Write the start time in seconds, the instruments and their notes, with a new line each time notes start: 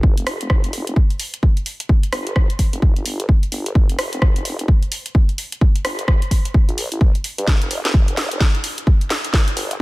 0.03 wobble bass G1, kick
0.17 wobble bass F1, closed hi-hat
0.27 cross-stick, open hi-hat
0.41 closed hi-hat
0.50 wobble bass G1, kick, cross-stick
0.64 wobble bass F1, closed hi-hat
0.73 open hi-hat
0.87 closed hi-hat
0.96 kick
1.10 closed hi-hat
1.20 open hi-hat
1.34 closed hi-hat
1.43 kick
1.57 closed hi-hat
1.66 open hi-hat
1.80 closed hi-hat
1.89 kick
2.03 closed hi-hat
2.13 wobble bass G1, cross-stick, open hi-hat
2.27 closed hi-hat
2.36 wobble bass G1, kick, cross-stick
2.50 closed hi-hat
2.59 kick, open hi-hat
2.73 wobble bass F1, closed hi-hat
2.82 kick
2.96 wobble bass G1, closed hi-hat
3.05 wobble bass G1, open hi-hat
3.20 closed hi-hat
3.29 kick
3.43 closed hi-hat
3.52 wobble bass G1, open hi-hat
3.66 closed hi-hat
3.75 wobble bass G1, kick
3.89 wobble bass F1, closed hi-hat
3.99 cross-stick, open hi-hat
4.13 closed hi-hat
4.22 wobble bass G1, kick, cross-stick
4.36 wobble bass F1, closed hi-hat
4.45 open hi-hat
4.59 closed hi-hat
4.68 kick
4.83 closed hi-hat
4.92 open hi-hat
5.06 closed hi-hat
5.15 kick
5.29 closed hi-hat
5.38 open hi-hat
5.52 closed hi-hat
5.61 kick
5.76 closed hi-hat
5.85 wobble bass G1, cross-stick, open hi-hat
5.99 closed hi-hat
6.08 wobble bass G1, kick, cross-stick
6.22 closed hi-hat
6.31 kick, open hi-hat
6.45 closed hi-hat
6.54 kick
6.68 wobble bass A#1, closed hi-hat
6.78 open hi-hat
6.92 wobble bass A1, closed hi-hat
7.01 kick
7.15 closed hi-hat
7.24 open hi-hat
7.38 wobble bass G2, closed hi-hat
7.47 wobble bass G1, kick, snare
7.61 wobble bass F1, closed hi-hat
7.71 open hi-hat
7.85 snare, closed hi-hat
7.94 wobble bass G1, kick
8.08 wobble bass F1, closed hi-hat
8.17 snare, open hi-hat
8.31 closed hi-hat
8.40 kick, snare
8.55 closed hi-hat
8.64 open hi-hat
8.78 closed hi-hat
8.87 kick
9.01 closed hi-hat
9.10 snare, open hi-hat
9.24 closed hi-hat
9.33 kick, snare
9.48 closed hi-hat
9.57 wobble bass G1, open hi-hat
9.71 closed hi-hat